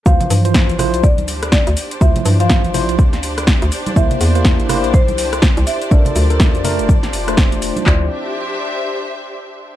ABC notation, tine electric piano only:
X:1
M:4/4
L:1/16
Q:"Swing 16ths" 1/4=123
K:Dm
V:1 name="Tine electric piano"
[E,F,c]3 [E,F,c]3 [F,Ec]2 z8 | [F,Ec]3 [E,F,c]3 [F,Ec]2 z8 | [B,Ec]3 [B,Ec]3 [B,Ec]2 z8 | [DAB]3 [DAB]3 [A,DB]2 z3 [A,Dc]4- [A,Dc] |
[F,Ec]2 z12 z2 |]